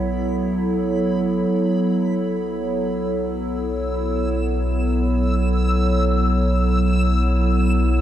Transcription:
Already playing: B1 F#3 B3 E4 A4 C#5 B5
1.50 B1 E6

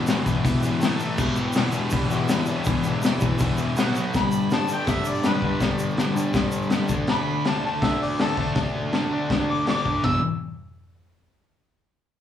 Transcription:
Already playing: G4 B4 E5
0.07 E2 B2 E3, snare, open hi-hat, shaker
0.26 E2 B2 E3, kick, shaker
0.44 E2 B2 E3, kick, open hi-hat, shaker
0.63 E2 B2 E3, shaker
0.80 A2 E3 A3 A4, snare, open hi-hat, shaker
0.85 E4 E5
0.99 A2 E3 A3, shaker
1.18 E2 B2 E3 G4 B4 E5, kick, crash, shaker
1.36 E2 B2 E3, shaker
1.53 E2 B2, snare, open hi-hat, shaker
1.57 E3
1.72 E2 B2, shaker
1.76 E3
1.90 E2 B2, kick, open hi-hat, shaker
1.94 E3
2.11 E2 B2 E3, shaker
2.28 E2 B2 E3, snare, open hi-hat, shaker
2.46 E2 B2, shaker
2.50 E3
2.64 E2 B2, kick, open hi-hat, shaker
2.69 E3
2.83 E2 B2 E3, shaker
3.02 E2 B2 E3, snare, open hi-hat, shaker
3.20 E2 B2 E3, kick, shaker
3.38 E2 B2 E3, kick, open hi-hat, shaker
3.58 E2 B2 E3, shaker
3.76 B2 F#3 B3 B4 F#5, snare, open hi-hat, shaker
3.81 F#4
3.95 B2 F#3 B3, shaker
4.14 G2 D3 G3 G4 B4 B5, kick, snare, open hi-hat, shaker
4.19 D5
4.31 shaker
4.50 G2 D3 G3 A5, snare, open hi-hat, shaker
4.68 G2 D3 G3, shaker
4.73 G5
4.87 G2 D3 G3 E5, kick, snare, open hi-hat, shaker
5.05 D5, shaker
5.23 G2 D3 G3 B4, snare, open hi-hat, shaker
5.42 G2 D3 G3, kick
5.60 G2 D3 G3, kick, snare, open hi-hat, shaker
5.79 shaker
5.97 G2 D3 G3, snare, open hi-hat, shaker
6.15 G2 D3 G3, shaker
6.34 G2 D3 G3, kick, snare, open hi-hat, shaker
6.51 shaker
6.62 shaker
6.70 G2 D3 G3, snare, open hi-hat, shaker
6.89 D3 A3 D4 F#4, kick, shaker
6.93 A4 D5
7.07 D3 A3 D4 B5, snare, open hi-hat
7.45 D3 A3 D4 A5, snare, open hi-hat
7.64 D3 A3 D4 A5
7.82 D3 A3 D4 E5, kick, snare, open hi-hat
8.02 D5
8.19 D3 A3 D4 A4, snare, open hi-hat
8.37 D3 A3 D4, kick
8.55 D3 A3 D4, kick, snare, open hi-hat
8.93 D3 A3 D4, snare, open hi-hat
9.11 D3 A3 D4
9.29 D3 A3 D4, kick, snare, open hi-hat
9.50 D6
9.66 D3 A3 D4 D6, snare, open hi-hat
9.85 D3 A3 D4, kick
10.03 E2 B2 E3 G#4 B4 E5 E6, kick, floor tom, splash

